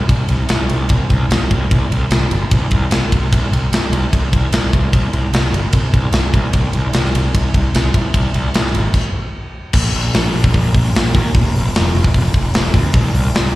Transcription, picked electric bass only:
0.09 0.22 C2 medium
0.30 0.42 C2 loud
0.50 0.63 C2 medium
0.71 0.83 C2 medium
0.90 1.02 C2 medium
1.11 1.23 C2 medium
1.31 1.43 C2 loud
1.51 1.63 C2 medium
1.71 1.84 C2 loud
1.91 2.03 C2 medium
2.11 2.24 C2 medium
2.32 2.44 G1 medium
2.52 2.64 C2 medium
2.72 2.84 C2 medium
2.91 3.04 C2 medium
3.13 3.25 C2 medium
3.33 3.45 C2 medium
3.52 3.64 C2 medium
3.72 3.85 C2 medium
3.92 4.04 C2 medium
4.13 4.25 C2 medium
4.34 4.45 C2 medium
4.53 4.65 C2 medium
4.74 4.86 C2 medium
4.93 5.05 C2 medium
5.13 5.25 C2 medium
5.33 5.45 C2 medium
5.53 5.65 G1 medium
5.73 5.85 C2 medium
5.94 6.06 C2 medium
6.13 6.26 C2 loud
6.34 6.46 C2 medium
6.54 6.66 C2 medium
6.75 6.87 C2 medium
6.95 7.07 C2 medium
7.15 7.27 C2 medium
7.35 7.47 C2 loud
7.55 7.67 C2 medium
7.75 7.87 C2 loud
7.94 8.06 C2 medium
8.14 8.27 C2 medium
8.35 8.47 C2 medium
8.55 8.67 C2 medium
8.74 8.86 G#1 medium
9.74 9.88 A#1 medium
9.95 10.09 A#1 loud
10.14 10.29 A#1 loud
10.34 10.49 A#1 medium
10.55 10.69 A#1 medium
10.75 10.89 A#1 medium
10.95 11.09 A#1 loud
11.15 11.29 D#2 medium
11.35 11.49 F1 medium
11.56 11.69 F1 loud
11.76 11.89 F1 medium
11.95 12.09 F1 medium
12.14 12.29 F1 loud
12.35 12.49 F1 medium
12.55 12.69 F1 loud
12.74 12.88 D2 loud
12.94 13.08 C2 loud
13.13 13.28 C2 loud
13.34 13.48 C2 medium

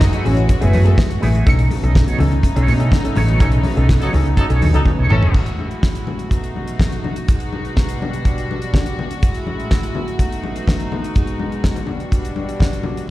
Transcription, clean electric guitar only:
0.12 0.23 A3 medium
0.12 0.24 E4 medium
0.12 0.25 G#4 medium
0.24 muted clean electric guitar stroke soft
0.49 muted clean electric guitar stroke soft
0.61 0.72 A3 medium
0.61 0.73 E4 medium
0.61 0.74 G#4 medium
0.73 0.88 A3 medium
0.73 0.86 E4 medium
0.73 0.85 G#4 medium
0.98 muted clean electric guitar stroke soft
1.11 muted clean electric guitar stroke soft
1.21 1.35 A3 medium
1.21 1.34 E4 medium
1.21 1.33 G#4 medium
1.34 1.50 A3 medium
1.34 1.46 E4 medium
1.34 1.47 G#4 medium
1.47 1.65 D#4 medium
1.47 1.58 A4 medium
1.47 1.56 C#5 medium
1.58 muted clean electric guitar stroke medium
1.71 muted clean electric guitar stroke soft
1.83 1.94 D#4 medium
1.83 1.95 A4 medium
1.83 1.96 D#5 medium
1.95 muted clean electric guitar stroke soft
2.07 2.19 D#4 medium
2.07 2.19 A4 medium
2.07 2.20 C#5 medium
2.20 muted clean electric guitar stroke soft
2.31 muted clean electric guitar stroke soft
2.42 muted clean electric guitar stroke soft
2.54 2.65 D#4 medium
2.54 2.66 A4 medium
2.54 2.67 C#5 medium
2.66 2.81 D#4 medium
2.66 2.78 A4 medium
2.66 2.77 C#5 medium
2.78 muted clean electric guitar stroke soft
2.90 muted clean electric guitar stroke soft
3.04 muted clean electric guitar stroke soft
3.16 3.28 D#4 medium
3.16 3.28 A4 medium
3.16 3.27 C#5 medium
3.28 3.38 D#4 medium
3.28 3.39 A4 medium
3.28 3.40 C#5 medium
3.39 3.58 D#4 medium
3.39 3.52 A4 medium
3.39 3.51 C#5 medium
3.52 muted clean electric guitar stroke soft
3.63 muted clean electric guitar stroke soft
3.76 3.87 D#4 medium
3.76 3.87 A4 medium
3.76 3.89 D#5 medium
3.88 muted clean electric guitar stroke soft
4.00 4.11 D#4 medium
4.00 4.12 A4 medium
4.00 4.12 C#5 medium
4.12 muted clean electric guitar stroke soft
4.26 muted clean electric guitar stroke soft
4.38 muted clean electric guitar stroke soft
4.50 4.61 D#4 medium
4.50 4.62 A4 medium
4.50 4.63 C#5 medium
4.62 4.76 D#4 medium
4.62 4.75 A4 medium
4.62 4.74 C#5 medium
4.86 muted clean electric guitar stroke soft
4.98 5.09 D#4 medium
4.98 5.10 A4 medium
4.98 5.11 C#5 medium
5.10 5.24 D#4 medium
5.10 5.23 A4 medium
5.10 5.22 C#5 medium
5.23 muted clean electric guitar stroke medium

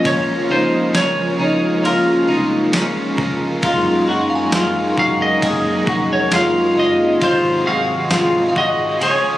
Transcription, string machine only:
0.00 3.60 F3 medium
0.00 9.38 G#3 medium
0.00 7.18 A#3 medium
0.00 7.18 C#4 medium
0.00 3.60 F4 medium
3.64 8.97 F#3 medium
3.64 8.97 D#4 medium
7.21 8.99 C3 medium
7.21 8.99 D#3 medium
9.01 9.38 F5 loud

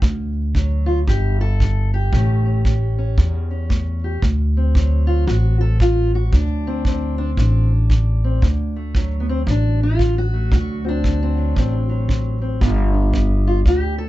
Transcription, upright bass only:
0.02 1.03 D2 loud
1.07 2.09 G1 loud
2.13 3.14 A1 loud
3.18 4.19 E2 medium
4.22 5.24 D2 loud
5.27 6.29 A1 loud
6.33 7.34 D2 loud
7.37 8.39 A1 loud
8.42 9.43 D2 loud
9.47 10.48 A1 loud
10.52 11.53 D2 loud
11.56 12.57 A1 medium
12.61 13.62 G1 loud
13.66 14.09 D2 loud

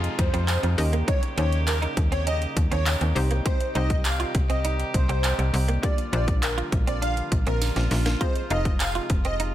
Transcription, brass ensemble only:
0.00 0.76 C3 medium
0.00 0.76 F3 medium
0.00 0.76 G#3 medium
0.00 0.76 D#4 medium
0.00 0.76 F4 medium
0.78 3.13 C#3 medium
0.78 3.13 G3 medium
0.78 3.13 A#3 medium
0.78 5.79 D#4 medium
0.78 3.13 G4 medium
3.16 5.81 C3 medium
3.16 5.80 D#3 medium
3.16 8.17 G3 medium
3.16 5.81 G4 medium
5.83 8.18 D3 medium
5.83 8.18 F3 medium
5.83 8.18 A#3 medium
5.83 9.54 F4 medium
8.21 9.54 C3 medium
8.21 9.54 F3 medium
8.21 9.54 G#3 medium
8.21 9.54 D#4 medium

